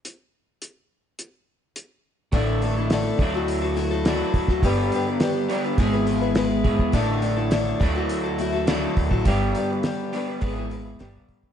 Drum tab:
HH |x---x---x---x---|o-o-o-o-o-o-o-o-|o-o-o-o-o-o-o-o-|o-o-o-o-o-o-o-o-|
SD |----------------|----o-------o--o|----o-------o---|----o-------o---|
BD |----------------|o-----o-------oo|o-------o-----oo|o-----o-------oo|

HH |o-o-o-o-o-o-o-o-|
SD |----o-------o---|
BD |o-------o-----oo|